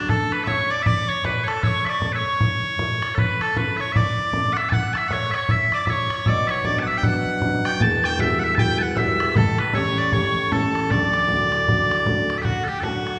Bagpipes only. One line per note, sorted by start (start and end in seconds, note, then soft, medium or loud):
0.09 0.32 A4 loud
0.32 0.44 B4 medium
0.44 0.71 C#5 loud
0.44 0.48 E5 loud
0.71 0.82 D5 loud
0.82 1.09 D5 loud
0.82 0.86 E5 loud
1.09 1.25 C#5 loud
1.25 1.44 B4 loud
1.44 1.48 C#5 medium
1.48 1.63 A4 medium
1.63 1.85 C#5 loud
1.85 1.89 E5 medium
1.89 2.12 D5 medium
2.12 2.15 B4 medium
2.12 3.15 C#5 loud
3.15 3.19 A4 medium
3.19 3.42 B4 loud
3.42 3.58 A4 medium
3.58 3.77 B4 medium
3.77 3.92 C#5 medium
3.77 3.80 E5 medium
3.92 3.96 E5 loud
3.96 4.53 D5 loud
4.53 4.57 F#5 medium
4.57 4.69 E5 medium
4.69 4.93 F#5 loud
4.69 4.73 A5 loud
4.93 5.08 E5 medium
4.93 4.97 A5 medium
5.08 5.12 F#5 loud
5.12 5.31 C#5 loud
5.31 5.35 E5 medium
5.35 5.51 C#5 medium
5.51 5.74 E5 loud
5.74 5.85 D5 medium
5.85 5.89 E5 medium
5.89 6.28 C#5 medium
6.28 6.47 D5 loud
6.47 6.66 C#5 medium
6.47 6.50 E5 medium
6.66 6.79 D5 loud
6.79 6.88 F#5 medium
6.79 6.83 A5 medium
6.88 6.98 E5 medium
6.98 7.04 G5 medium
7.04 7.66 F#5 loud
7.66 7.82 G5 loud
7.82 8.05 A5 loud
8.05 8.20 G5 loud
8.20 8.39 E5 loud
8.39 8.44 F#5 medium
8.44 8.55 E5 medium
8.55 8.59 A5 loud
8.59 8.78 G5 loud
8.78 8.98 F#5 medium
8.78 8.82 A5 medium
8.98 9.37 E5 loud
9.37 9.59 A4 loud
9.59 9.74 B4 medium
9.74 9.98 C#5 loud
9.98 10.13 D5 medium
10.13 10.52 C#5 loud
10.52 10.91 A4 medium
10.91 12.38 D5 loud
12.38 12.42 E5 medium
12.42 12.64 F#4 medium
12.42 12.44 G4 medium
12.64 12.80 G4 medium
12.64 12.68 A4 medium
12.80 13.19 F#4 medium
12.80 12.83 A4 medium